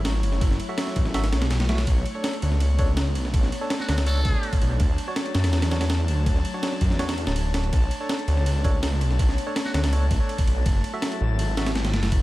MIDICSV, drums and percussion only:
0, 0, Header, 1, 2, 480
1, 0, Start_track
1, 0, Key_signature, 2, "minor"
1, 0, Tempo, 365854
1, 539, Time_signature, 4, 2, 24, 8
1, 16037, End_track
2, 0, Start_track
2, 0, Title_t, "Drums"
2, 64, Note_on_c, 9, 38, 126
2, 64, Note_on_c, 9, 51, 93
2, 195, Note_off_c, 9, 38, 0
2, 195, Note_off_c, 9, 51, 0
2, 305, Note_on_c, 9, 51, 73
2, 424, Note_on_c, 9, 38, 51
2, 436, Note_off_c, 9, 51, 0
2, 541, Note_on_c, 9, 36, 113
2, 543, Note_on_c, 9, 51, 85
2, 556, Note_off_c, 9, 38, 0
2, 666, Note_on_c, 9, 38, 50
2, 673, Note_off_c, 9, 36, 0
2, 674, Note_off_c, 9, 51, 0
2, 782, Note_on_c, 9, 51, 70
2, 798, Note_off_c, 9, 38, 0
2, 913, Note_off_c, 9, 51, 0
2, 1019, Note_on_c, 9, 38, 121
2, 1019, Note_on_c, 9, 51, 96
2, 1142, Note_off_c, 9, 38, 0
2, 1142, Note_on_c, 9, 38, 56
2, 1150, Note_off_c, 9, 51, 0
2, 1258, Note_on_c, 9, 51, 73
2, 1260, Note_on_c, 9, 36, 99
2, 1274, Note_off_c, 9, 38, 0
2, 1381, Note_on_c, 9, 38, 62
2, 1389, Note_off_c, 9, 51, 0
2, 1391, Note_off_c, 9, 36, 0
2, 1499, Note_off_c, 9, 38, 0
2, 1499, Note_on_c, 9, 38, 104
2, 1499, Note_on_c, 9, 51, 79
2, 1621, Note_off_c, 9, 38, 0
2, 1621, Note_off_c, 9, 51, 0
2, 1621, Note_on_c, 9, 38, 108
2, 1621, Note_on_c, 9, 51, 83
2, 1739, Note_off_c, 9, 38, 0
2, 1739, Note_off_c, 9, 51, 0
2, 1739, Note_on_c, 9, 38, 104
2, 1739, Note_on_c, 9, 51, 79
2, 1859, Note_off_c, 9, 38, 0
2, 1859, Note_off_c, 9, 51, 0
2, 1859, Note_on_c, 9, 38, 104
2, 1859, Note_on_c, 9, 51, 74
2, 1975, Note_off_c, 9, 38, 0
2, 1975, Note_off_c, 9, 51, 0
2, 1975, Note_on_c, 9, 38, 108
2, 1975, Note_on_c, 9, 51, 86
2, 2099, Note_off_c, 9, 38, 0
2, 2099, Note_off_c, 9, 51, 0
2, 2099, Note_on_c, 9, 38, 105
2, 2099, Note_on_c, 9, 51, 80
2, 2217, Note_off_c, 9, 38, 0
2, 2217, Note_off_c, 9, 51, 0
2, 2217, Note_on_c, 9, 38, 112
2, 2217, Note_on_c, 9, 51, 87
2, 2337, Note_off_c, 9, 38, 0
2, 2337, Note_off_c, 9, 51, 0
2, 2337, Note_on_c, 9, 38, 102
2, 2337, Note_on_c, 9, 51, 77
2, 2454, Note_off_c, 9, 51, 0
2, 2454, Note_on_c, 9, 51, 87
2, 2457, Note_on_c, 9, 36, 111
2, 2468, Note_off_c, 9, 38, 0
2, 2585, Note_off_c, 9, 51, 0
2, 2588, Note_off_c, 9, 36, 0
2, 2697, Note_on_c, 9, 51, 70
2, 2828, Note_off_c, 9, 51, 0
2, 2937, Note_on_c, 9, 38, 122
2, 2937, Note_on_c, 9, 51, 92
2, 3062, Note_off_c, 9, 51, 0
2, 3062, Note_on_c, 9, 51, 45
2, 3068, Note_off_c, 9, 38, 0
2, 3179, Note_off_c, 9, 51, 0
2, 3179, Note_on_c, 9, 51, 71
2, 3300, Note_on_c, 9, 38, 46
2, 3310, Note_off_c, 9, 51, 0
2, 3416, Note_on_c, 9, 51, 90
2, 3431, Note_off_c, 9, 38, 0
2, 3547, Note_off_c, 9, 51, 0
2, 3655, Note_on_c, 9, 51, 67
2, 3657, Note_on_c, 9, 36, 92
2, 3786, Note_off_c, 9, 51, 0
2, 3788, Note_off_c, 9, 36, 0
2, 3896, Note_on_c, 9, 38, 120
2, 3896, Note_on_c, 9, 51, 94
2, 4027, Note_off_c, 9, 38, 0
2, 4027, Note_off_c, 9, 51, 0
2, 4138, Note_on_c, 9, 51, 72
2, 4262, Note_on_c, 9, 38, 49
2, 4269, Note_off_c, 9, 51, 0
2, 4377, Note_on_c, 9, 36, 115
2, 4380, Note_on_c, 9, 51, 92
2, 4393, Note_off_c, 9, 38, 0
2, 4504, Note_on_c, 9, 38, 50
2, 4509, Note_off_c, 9, 36, 0
2, 4511, Note_off_c, 9, 51, 0
2, 4623, Note_on_c, 9, 51, 71
2, 4636, Note_off_c, 9, 38, 0
2, 4754, Note_off_c, 9, 51, 0
2, 4859, Note_on_c, 9, 38, 125
2, 4859, Note_on_c, 9, 51, 95
2, 4983, Note_off_c, 9, 38, 0
2, 4983, Note_on_c, 9, 38, 56
2, 4990, Note_off_c, 9, 51, 0
2, 5098, Note_off_c, 9, 38, 0
2, 5098, Note_on_c, 9, 38, 106
2, 5098, Note_on_c, 9, 51, 82
2, 5219, Note_off_c, 9, 38, 0
2, 5219, Note_off_c, 9, 51, 0
2, 5219, Note_on_c, 9, 38, 112
2, 5219, Note_on_c, 9, 51, 84
2, 5333, Note_off_c, 9, 51, 0
2, 5333, Note_on_c, 9, 51, 92
2, 5350, Note_off_c, 9, 38, 0
2, 5464, Note_off_c, 9, 51, 0
2, 5574, Note_on_c, 9, 51, 77
2, 5576, Note_on_c, 9, 36, 99
2, 5706, Note_off_c, 9, 51, 0
2, 5707, Note_off_c, 9, 36, 0
2, 5813, Note_on_c, 9, 51, 62
2, 5938, Note_on_c, 9, 36, 96
2, 5939, Note_off_c, 9, 51, 0
2, 5939, Note_on_c, 9, 51, 80
2, 6055, Note_off_c, 9, 51, 0
2, 6055, Note_on_c, 9, 51, 64
2, 6070, Note_off_c, 9, 36, 0
2, 6186, Note_off_c, 9, 51, 0
2, 6294, Note_on_c, 9, 51, 89
2, 6296, Note_on_c, 9, 36, 111
2, 6425, Note_off_c, 9, 51, 0
2, 6427, Note_off_c, 9, 36, 0
2, 6536, Note_on_c, 9, 51, 70
2, 6667, Note_off_c, 9, 51, 0
2, 6772, Note_on_c, 9, 38, 123
2, 6772, Note_on_c, 9, 51, 92
2, 6896, Note_off_c, 9, 51, 0
2, 6896, Note_on_c, 9, 51, 46
2, 6903, Note_off_c, 9, 38, 0
2, 7014, Note_off_c, 9, 51, 0
2, 7014, Note_on_c, 9, 38, 107
2, 7014, Note_on_c, 9, 51, 81
2, 7136, Note_off_c, 9, 38, 0
2, 7136, Note_off_c, 9, 51, 0
2, 7136, Note_on_c, 9, 38, 109
2, 7136, Note_on_c, 9, 51, 84
2, 7254, Note_off_c, 9, 38, 0
2, 7254, Note_off_c, 9, 51, 0
2, 7254, Note_on_c, 9, 38, 105
2, 7254, Note_on_c, 9, 51, 80
2, 7378, Note_off_c, 9, 38, 0
2, 7378, Note_off_c, 9, 51, 0
2, 7378, Note_on_c, 9, 38, 110
2, 7378, Note_on_c, 9, 51, 83
2, 7497, Note_off_c, 9, 38, 0
2, 7497, Note_off_c, 9, 51, 0
2, 7497, Note_on_c, 9, 38, 104
2, 7497, Note_on_c, 9, 51, 80
2, 7621, Note_off_c, 9, 38, 0
2, 7621, Note_off_c, 9, 51, 0
2, 7621, Note_on_c, 9, 38, 105
2, 7621, Note_on_c, 9, 51, 79
2, 7737, Note_off_c, 9, 38, 0
2, 7737, Note_off_c, 9, 51, 0
2, 7737, Note_on_c, 9, 38, 124
2, 7737, Note_on_c, 9, 51, 90
2, 7868, Note_off_c, 9, 38, 0
2, 7868, Note_off_c, 9, 51, 0
2, 7979, Note_on_c, 9, 51, 75
2, 8110, Note_off_c, 9, 51, 0
2, 8217, Note_on_c, 9, 36, 112
2, 8218, Note_on_c, 9, 51, 89
2, 8342, Note_on_c, 9, 38, 48
2, 8348, Note_off_c, 9, 36, 0
2, 8349, Note_off_c, 9, 51, 0
2, 8460, Note_on_c, 9, 51, 72
2, 8474, Note_off_c, 9, 38, 0
2, 8591, Note_off_c, 9, 51, 0
2, 8697, Note_on_c, 9, 38, 119
2, 8697, Note_on_c, 9, 51, 92
2, 8821, Note_off_c, 9, 38, 0
2, 8821, Note_on_c, 9, 38, 56
2, 8828, Note_off_c, 9, 51, 0
2, 8935, Note_on_c, 9, 51, 72
2, 8936, Note_on_c, 9, 36, 101
2, 8952, Note_off_c, 9, 38, 0
2, 9057, Note_on_c, 9, 38, 59
2, 9066, Note_off_c, 9, 51, 0
2, 9067, Note_off_c, 9, 36, 0
2, 9175, Note_off_c, 9, 38, 0
2, 9175, Note_on_c, 9, 38, 104
2, 9175, Note_on_c, 9, 51, 81
2, 9299, Note_off_c, 9, 38, 0
2, 9299, Note_off_c, 9, 51, 0
2, 9299, Note_on_c, 9, 38, 113
2, 9299, Note_on_c, 9, 51, 81
2, 9416, Note_off_c, 9, 38, 0
2, 9416, Note_off_c, 9, 51, 0
2, 9416, Note_on_c, 9, 38, 39
2, 9416, Note_on_c, 9, 51, 70
2, 9537, Note_off_c, 9, 38, 0
2, 9537, Note_on_c, 9, 38, 113
2, 9547, Note_off_c, 9, 51, 0
2, 9655, Note_on_c, 9, 51, 89
2, 9668, Note_off_c, 9, 38, 0
2, 9786, Note_off_c, 9, 51, 0
2, 9894, Note_on_c, 9, 38, 109
2, 9894, Note_on_c, 9, 51, 84
2, 10020, Note_off_c, 9, 51, 0
2, 10020, Note_on_c, 9, 51, 40
2, 10025, Note_off_c, 9, 38, 0
2, 10138, Note_off_c, 9, 51, 0
2, 10138, Note_on_c, 9, 36, 112
2, 10138, Note_on_c, 9, 51, 92
2, 10270, Note_off_c, 9, 36, 0
2, 10270, Note_off_c, 9, 51, 0
2, 10378, Note_on_c, 9, 51, 69
2, 10509, Note_off_c, 9, 51, 0
2, 10619, Note_on_c, 9, 38, 126
2, 10619, Note_on_c, 9, 51, 92
2, 10745, Note_off_c, 9, 51, 0
2, 10745, Note_on_c, 9, 51, 46
2, 10751, Note_off_c, 9, 38, 0
2, 10862, Note_off_c, 9, 51, 0
2, 10862, Note_on_c, 9, 51, 69
2, 10984, Note_on_c, 9, 38, 47
2, 10993, Note_off_c, 9, 51, 0
2, 11102, Note_on_c, 9, 51, 88
2, 11115, Note_off_c, 9, 38, 0
2, 11233, Note_off_c, 9, 51, 0
2, 11340, Note_on_c, 9, 36, 95
2, 11344, Note_on_c, 9, 51, 68
2, 11471, Note_off_c, 9, 36, 0
2, 11475, Note_off_c, 9, 51, 0
2, 11582, Note_on_c, 9, 38, 123
2, 11582, Note_on_c, 9, 51, 95
2, 11713, Note_off_c, 9, 38, 0
2, 11713, Note_off_c, 9, 51, 0
2, 11823, Note_on_c, 9, 51, 75
2, 11945, Note_on_c, 9, 38, 50
2, 11955, Note_off_c, 9, 51, 0
2, 12060, Note_on_c, 9, 36, 111
2, 12062, Note_on_c, 9, 51, 88
2, 12076, Note_off_c, 9, 38, 0
2, 12186, Note_on_c, 9, 38, 49
2, 12191, Note_off_c, 9, 36, 0
2, 12194, Note_off_c, 9, 51, 0
2, 12307, Note_on_c, 9, 51, 72
2, 12317, Note_off_c, 9, 38, 0
2, 12439, Note_off_c, 9, 51, 0
2, 12544, Note_on_c, 9, 38, 122
2, 12544, Note_on_c, 9, 51, 91
2, 12667, Note_off_c, 9, 38, 0
2, 12667, Note_on_c, 9, 38, 54
2, 12675, Note_off_c, 9, 51, 0
2, 12784, Note_off_c, 9, 38, 0
2, 12784, Note_on_c, 9, 38, 111
2, 12784, Note_on_c, 9, 51, 81
2, 12905, Note_off_c, 9, 38, 0
2, 12905, Note_off_c, 9, 51, 0
2, 12905, Note_on_c, 9, 38, 108
2, 12905, Note_on_c, 9, 51, 82
2, 13023, Note_off_c, 9, 51, 0
2, 13023, Note_on_c, 9, 51, 89
2, 13037, Note_off_c, 9, 38, 0
2, 13154, Note_off_c, 9, 51, 0
2, 13261, Note_on_c, 9, 36, 97
2, 13261, Note_on_c, 9, 51, 79
2, 13392, Note_off_c, 9, 36, 0
2, 13392, Note_off_c, 9, 51, 0
2, 13503, Note_on_c, 9, 51, 64
2, 13623, Note_on_c, 9, 36, 99
2, 13624, Note_off_c, 9, 51, 0
2, 13624, Note_on_c, 9, 51, 80
2, 13742, Note_off_c, 9, 51, 0
2, 13742, Note_on_c, 9, 51, 63
2, 13754, Note_off_c, 9, 36, 0
2, 13873, Note_off_c, 9, 51, 0
2, 13982, Note_on_c, 9, 36, 111
2, 13984, Note_on_c, 9, 51, 89
2, 14113, Note_off_c, 9, 36, 0
2, 14116, Note_off_c, 9, 51, 0
2, 14223, Note_on_c, 9, 51, 71
2, 14354, Note_off_c, 9, 51, 0
2, 14461, Note_on_c, 9, 38, 124
2, 14461, Note_on_c, 9, 51, 94
2, 14586, Note_off_c, 9, 51, 0
2, 14586, Note_on_c, 9, 51, 45
2, 14592, Note_off_c, 9, 38, 0
2, 14717, Note_off_c, 9, 51, 0
2, 14942, Note_on_c, 9, 51, 88
2, 15074, Note_off_c, 9, 51, 0
2, 15184, Note_on_c, 9, 38, 104
2, 15184, Note_on_c, 9, 51, 82
2, 15304, Note_off_c, 9, 38, 0
2, 15304, Note_off_c, 9, 51, 0
2, 15304, Note_on_c, 9, 38, 101
2, 15304, Note_on_c, 9, 51, 80
2, 15422, Note_off_c, 9, 38, 0
2, 15422, Note_off_c, 9, 51, 0
2, 15422, Note_on_c, 9, 38, 112
2, 15422, Note_on_c, 9, 51, 84
2, 15542, Note_off_c, 9, 38, 0
2, 15542, Note_off_c, 9, 51, 0
2, 15542, Note_on_c, 9, 38, 103
2, 15542, Note_on_c, 9, 51, 80
2, 15659, Note_off_c, 9, 38, 0
2, 15659, Note_off_c, 9, 51, 0
2, 15659, Note_on_c, 9, 38, 114
2, 15659, Note_on_c, 9, 51, 85
2, 15781, Note_off_c, 9, 38, 0
2, 15781, Note_off_c, 9, 51, 0
2, 15781, Note_on_c, 9, 38, 101
2, 15781, Note_on_c, 9, 51, 82
2, 15900, Note_off_c, 9, 51, 0
2, 15900, Note_on_c, 9, 51, 89
2, 15901, Note_on_c, 9, 36, 111
2, 15912, Note_off_c, 9, 38, 0
2, 16031, Note_off_c, 9, 51, 0
2, 16032, Note_off_c, 9, 36, 0
2, 16037, End_track
0, 0, End_of_file